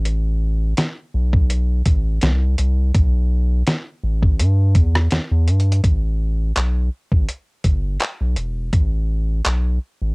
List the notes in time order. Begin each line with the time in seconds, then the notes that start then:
Already playing: A1
0.05 closed hi-hat
0.77 snare, closed hi-hat
1.14 B1
1.33 kick
1.50 closed hi-hat
1.86 A1, kick, closed hi-hat
2.21 C2, snare, closed hi-hat
2.58 C2, closed hi-hat
2.94 B1, kick, closed hi-hat
3.67 snare, closed hi-hat
4.04 A1
4.22 kick
4.39 G2, closed hi-hat
4.75 E2, kick, closed hi-hat
4.95 cross-stick
5.11 E2, snare, closed hi-hat
5.32 E2
5.48 G2, closed hi-hat
5.60 closed hi-hat
5.72 closed hi-hat
5.84 A1, kick, closed hi-hat
6.56 B1, clap, closed hi-hat
7.12 A1, kick
7.29 closed hi-hat
7.64 G1, kick, closed hi-hat
8.00 clap, closed hi-hat
8.21 B1
8.36 E1, closed hi-hat
8.73 A1, kick, closed hi-hat
9.45 B1, clap, closed hi-hat
10.02 A1